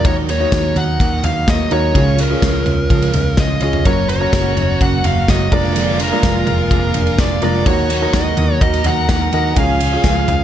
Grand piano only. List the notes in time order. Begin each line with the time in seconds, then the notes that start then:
0.05 D#3 D#4 F#4 A#4
0.40 D#4 F#4 C#5
1.71 D#4 F#4 A#4
1.94 C#3 C#4 F4 G#4
2.30 C#4 F4 G#4
3.62 C#4 F4 G#4
3.85 C#4 F#4 A#4
4.20 C#4 F#4 A#4
5.52 G#3 A#3 D4 F4 A#4
6.11 G#3 A#3 D4 F4 A#4
7.42 G#3 A#3 D4 F4 A#4
7.66 D#3 D#4 F#4 A#4
8.01 D#4 F#4 A#4
9.33 D#4 F#4 A#4
9.57 C#3 C#4 F4 G#4
9.93 C#4 F4 G#4